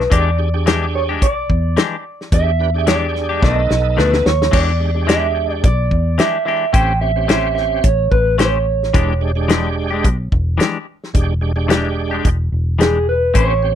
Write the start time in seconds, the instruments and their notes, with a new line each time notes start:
Already playing: clean electric guitar B4
0.00 snare
0.10 fingered electric bass E2, clean electric guitar E3 G#3 D4 G4 D5, tonewheel organ D4 G4 G#4, kick, closed hi-hat
0.38 tonewheel organ D4 G4 G#4
0.54 tonewheel organ D4 G4 G#4
0.66 clean electric guitar E3 G#3 D4 G4, snare, closed hi-hat
0.95 clean electric guitar C#5
1.09 clean electric guitar G#3 D4 G4
1.22 fingered electric bass B1, clean electric guitar D5, kick, closed hi-hat
1.50 fingered electric bass E2, kick
1.77 clean electric guitar E3 G#3 D4 G4, snare, closed hi-hat
2.21 snare
2.32 fingered electric bass E2, tonewheel organ D4 G4 G#4, clean electric guitar E5, kick, closed hi-hat
2.59 tonewheel organ D4 G4 B4
2.74 tonewheel organ D4 G4 G#4
2.87 clean electric guitar E3 G#3 D4 G4 D5, snare, closed hi-hat
3.16 snare
3.29 clean electric guitar G#3 D4 G4
3.42 fingered electric bass B1, clean electric guitar B2 D#3 A3 D4 D#5, tonewheel organ B3 D#4 A4, kick, snare
3.70 fingered electric bass B1, snare
3.97 fingered electric bass D2, clean electric guitar B2 D#3 A3 D4 B4, snare
4.13 snare
4.26 fingered electric bass D#2, clean electric guitar C#5, snare
4.42 snare
4.51 fingered electric bass E2, clean electric guitar E3 G#3 D4 G4 D5, tonewheel organ G#3 D4 G4, kick, crash
4.80 tonewheel organ G#3 D4 G4
4.94 tonewheel organ G#3 D4 G4
5.07 clean electric guitar E3 G#3 D4 G4 E5, snare, closed hi-hat
5.54 clean electric guitar D5
5.64 fingered electric bass B1, clean electric guitar D5, kick, closed hi-hat
5.91 fingered electric bass E2, kick
6.18 clean electric guitar E3 G#3 D4 G4 E5, snare, closed hi-hat
6.45 clean electric guitar E3 G#3 D4 G4 E5
6.73 fingered electric bass A1, clean electric guitar A3 C#4 G4 C5 G5, tonewheel organ C4 C#4 G4, kick, closed hi-hat
7.01 tonewheel organ C4 C#4 G4, clean electric guitar E5
7.16 tonewheel organ C4 C#4 G4
7.28 clean electric guitar A3 C#4 G4 C5 E5, snare, closed hi-hat
7.55 clean electric guitar E5, snare
7.84 fingered electric bass A1, clean electric guitar C#5, kick, closed hi-hat
8.11 fingered electric bass A1, clean electric guitar B4, kick
8.38 clean electric guitar A3 C#4 G4 C5 C#5, snare, closed hi-hat
8.83 snare
8.93 fingered electric bass E1, clean electric guitar E3 G#3 D4 G4, tonewheel organ G#3 D4 G4, kick, closed hi-hat
9.21 tonewheel organ G#3 D4 G4
9.35 tonewheel organ G#3 D4 G4
9.48 clean electric guitar E3 G#3 D4 G4, snare, closed hi-hat
9.91 clean electric guitar G#3 D4 G4
10.04 fingered electric bass B1, kick, closed hi-hat
10.32 fingered electric bass E1, kick
10.58 clean electric guitar E3 G#3 D4 G4, snare, closed hi-hat
11.04 snare
11.14 fingered electric bass E1, tonewheel organ G#3 D4 G4, kick, closed hi-hat
11.41 tonewheel organ G#3 D4 G4
11.56 tonewheel organ G#3 D4 G4
11.68 clean electric guitar E3 G#3 D4 G4, snare, closed hi-hat
12.11 clean electric guitar G#3 D4 G4
12.25 fingered electric bass E1, kick, closed hi-hat
12.52 fingered electric bass E1
12.79 clean electric guitar E3 G#3 D4 G4 G#4, snare, closed hi-hat
13.09 clean electric guitar B4
13.34 fingered electric bass A1, clean electric guitar A3 C#4 G4 C5 C#5, tonewheel organ C4 C#4 G4, kick, closed hi-hat
13.62 tonewheel organ C4 C#4 G4